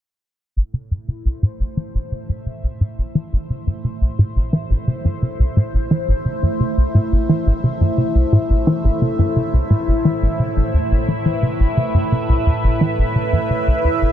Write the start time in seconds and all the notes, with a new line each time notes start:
0.56 A1 A2
0.73 C3
0.89 G2 E4
1.08 C3
1.15 A3
1.21 C5
1.25 C2
1.43 A2
1.60 A1
1.77 E3
1.94 A1
2.12 C3 E5
2.29 G2
2.46 C3
2.63 C2
2.81 A2
2.98 A1
3.15 E3
3.33 A1
3.50 C3
3.67 G2
3.84 C3
4.01 C2
4.19 A2
4.36 A1
4.53 E3
4.70 A1
4.87 C3
5.05 G2
5.22 C3
5.39 C2
5.57 A2
5.74 A1
5.91 E3
6.08 A1
6.25 C3
6.43 G2
6.60 C3
6.77 C2
6.95 A2
7.12 A1
7.29 E3
7.46 A1
7.64 C3
7.81 G2
7.98 C3
8.15 C2
8.32 A2
8.50 A1
8.67 E3
8.84 A1
9.02 C3
9.19 G2
9.36 C3
9.53 C2
9.70 A2
9.88 A1
10.05 E3
10.22 A1
10.39 C3
10.57 A1
10.74 E2
10.91 A1
11.08 E3
11.16 B4
11.26 E3
11.43 C3
11.60 A1
11.77 C3
11.94 G2
12.12 C3
12.29 C2
12.46 E2
12.64 A1
12.81 E3
12.98 A1
13.15 C3
13.33 G2
13.50 C3
13.67 C2
13.84 E2
14.02 A1